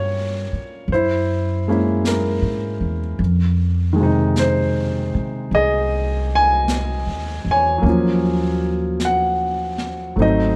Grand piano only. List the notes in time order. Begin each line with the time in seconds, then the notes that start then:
Already playing: G3 A#3 C#4 F4 A#4 C#5 F5
0.92 E4 C5
1.68 G#3 A#3 C#4 E4
2.08 A#4
3.93 D#3 G#3
4.00 C3 D#4
4.39 C5
5.55 G#4 D#5
6.35 G#5
7.51 C#5 G#5
7.78 F#3 A#3
7.85 F3 C#4
9.05 F#5
10.16 F#3 A3 C4
10.20 D#4 D#5
10.25 C5